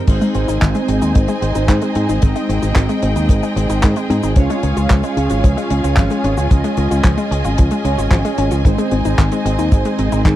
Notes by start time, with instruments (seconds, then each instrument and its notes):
0.07 fingered electric bass G#1, synth arpeggio sound D#3, analog polysynth G#3 C4 D#4 C5, string section C4 D#4 G#4 D#5 G#5, kick, closed hi-hat, crash, cabasa
0.21 synth arpeggio sound G#3, closed hi-hat, cabasa
0.34 fingered electric bass G#1, synth arpeggio sound C4, closed hi-hat
0.48 fingered electric bass G#1, synth arpeggio sound D#4, closed hi-hat, cabasa
0.61 fingered electric bass G#1, synth arpeggio sound D#3, kick, clap, closed hi-hat, cabasa
0.74 synth arpeggio sound G#3, closed hi-hat, cabasa
0.88 fingered electric bass G#1, synth arpeggio sound C4, closed hi-hat
1.02 fingered electric bass D#2, synth arpeggio sound D#4, closed hi-hat, cabasa
1.15 fingered electric bass G#1, synth arpeggio sound D#3, kick, closed hi-hat, cabasa
1.28 synth arpeggio sound G#3, closed hi-hat, cabasa
1.42 fingered electric bass G#1, synth arpeggio sound C4, closed hi-hat
1.55 fingered electric bass G#1, synth arpeggio sound D#4, closed hi-hat, cabasa
1.68 fingered electric bass G#2, synth arpeggio sound D#3, analog polysynth G#3 C4 D#4 C5, kick, clap, closed hi-hat, cabasa
1.81 synth arpeggio sound G#3, closed hi-hat, cabasa
1.95 fingered electric bass G#2, synth arpeggio sound C4, closed hi-hat
2.09 fingered electric bass G#1, synth arpeggio sound D#4, closed hi-hat, cabasa
2.22 fingered electric bass G#1, synth arpeggio sound D#3, analog polysynth G#3 C4 D#4 D#5, string section G5, kick, closed hi-hat, cabasa
2.35 synth arpeggio sound G#3, closed hi-hat, cabasa
2.49 fingered electric bass G#1, synth arpeggio sound C4, closed hi-hat
2.62 fingered electric bass G#1, synth arpeggio sound D#4, closed hi-hat, cabasa
2.76 fingered electric bass G#1, synth arpeggio sound D#3, kick, clap, closed hi-hat, cabasa
2.89 synth arpeggio sound G#3, closed hi-hat, cabasa
3.02 fingered electric bass G#1, synth arpeggio sound C4, closed hi-hat
3.16 fingered electric bass D#2, synth arpeggio sound D#4, closed hi-hat, cabasa
3.29 fingered electric bass G#1, synth arpeggio sound D#3, kick, closed hi-hat, cabasa
3.43 synth arpeggio sound G#3, closed hi-hat, cabasa
3.56 fingered electric bass G#1, analog polysynth G#3 C4 D#4 C5, synth arpeggio sound C4, closed hi-hat
3.70 fingered electric bass G#1, synth arpeggio sound D#4, closed hi-hat, cabasa
3.83 fingered electric bass G#2, synth arpeggio sound D#3, kick, clap, closed hi-hat, cabasa
3.96 synth arpeggio sound G#3, closed hi-hat, cabasa
4.10 fingered electric bass G#2, synth arpeggio sound C4, closed hi-hat
4.23 fingered electric bass G#1, synth arpeggio sound D#4, closed hi-hat, cabasa
4.36 fingered electric bass C#2, synth arpeggio sound F3, analog polysynth G#3 C#4 F4 C#5, string section C#4 F4 F5 G#5, kick, closed hi-hat, cabasa
4.50 synth arpeggio sound G#3, closed hi-hat, cabasa
4.63 fingered electric bass C#2, synth arpeggio sound C#4, closed hi-hat
4.77 fingered electric bass C#2, synth arpeggio sound F4, closed hi-hat, cabasa
4.90 fingered electric bass C#2, synth arpeggio sound F3, kick, clap, closed hi-hat, cabasa
5.03 synth arpeggio sound G#3, closed hi-hat, cabasa
5.17 fingered electric bass C#2, synth arpeggio sound C#4, closed hi-hat
5.30 fingered electric bass G#1, synth arpeggio sound F4, closed hi-hat, cabasa
5.44 fingered electric bass C#2, synth arpeggio sound F3, kick, closed hi-hat, cabasa
5.57 synth arpeggio sound G#3, closed hi-hat, cabasa
5.70 fingered electric bass C#2, synth arpeggio sound C#4, closed hi-hat
5.84 fingered electric bass C#2, synth arpeggio sound F4, closed hi-hat, cabasa
5.96 fingered electric bass G#1, synth arpeggio sound F3, analog polysynth G#3 C#4 F4 C#5, kick, clap, closed hi-hat, cabasa
6.10 synth arpeggio sound G#3, closed hi-hat, cabasa
6.24 fingered electric bass G#1, synth arpeggio sound C#4, closed hi-hat
6.37 fingered electric bass C#2, synth arpeggio sound F4, closed hi-hat, cabasa
6.51 fingered electric bass C#2, synth arpeggio sound F3, analog polysynth G#3 C#4 F4 D#5, string section D#5, kick, closed hi-hat, cabasa
6.64 synth arpeggio sound G#3, closed hi-hat, cabasa
6.77 fingered electric bass C#2, synth arpeggio sound C#4, closed hi-hat
6.91 fingered electric bass C#2, synth arpeggio sound F4, closed hi-hat, cabasa
7.04 fingered electric bass C#2, synth arpeggio sound F3, kick, clap, closed hi-hat, cabasa
7.18 synth arpeggio sound G#3, closed hi-hat, cabasa
7.31 fingered electric bass C#2, synth arpeggio sound C#4, closed hi-hat
7.44 fingered electric bass G#1, synth arpeggio sound F4, closed hi-hat, cabasa
7.58 fingered electric bass C#2, synth arpeggio sound F3, kick, closed hi-hat, cabasa
7.71 synth arpeggio sound G#3, closed hi-hat, cabasa
7.85 fingered electric bass C#2, analog polysynth G#3 C#4 F4 C#5, synth arpeggio sound C#4, closed hi-hat
7.98 fingered electric bass G#1, synth arpeggio sound F4, closed hi-hat, cabasa
8.11 fingered electric bass G#1, synth arpeggio sound F3, kick, clap, closed hi-hat, cabasa
8.25 synth arpeggio sound G#3, closed hi-hat, cabasa
8.38 fingered electric bass G#1, synth arpeggio sound C#4, closed hi-hat
8.51 fingered electric bass C#2, synth arpeggio sound F4, closed hi-hat, cabasa
8.65 fingered electric bass G#1, synth arpeggio sound D#3, analog polysynth G#3 C4 D#4 C5, string section C4 D#4 D#5, kick, closed hi-hat, cabasa
8.78 synth arpeggio sound G#3, closed hi-hat, cabasa
8.91 fingered electric bass G#1, synth arpeggio sound C4, closed hi-hat
9.05 fingered electric bass G#1, synth arpeggio sound D#4, closed hi-hat, cabasa
9.18 fingered electric bass G#1, synth arpeggio sound D#3, kick, clap, closed hi-hat, cabasa
9.32 synth arpeggio sound G#3, closed hi-hat, cabasa
9.45 fingered electric bass G#1, synth arpeggio sound C4, closed hi-hat
9.59 fingered electric bass D#2, synth arpeggio sound D#4, closed hi-hat, cabasa
9.72 fingered electric bass G#1, synth arpeggio sound D#3, kick, closed hi-hat, cabasa
9.85 synth arpeggio sound G#3, closed hi-hat, cabasa
9.99 fingered electric bass G#1, synth arpeggio sound C4, closed hi-hat
10.12 fingered electric bass G#1, synth arpeggio sound D#4, closed hi-hat, cabasa
10.25 fingered electric bass G#2, synth arpeggio sound D#3, analog polysynth G#3 C4 D#4 C5, kick, clap, closed hi-hat, cabasa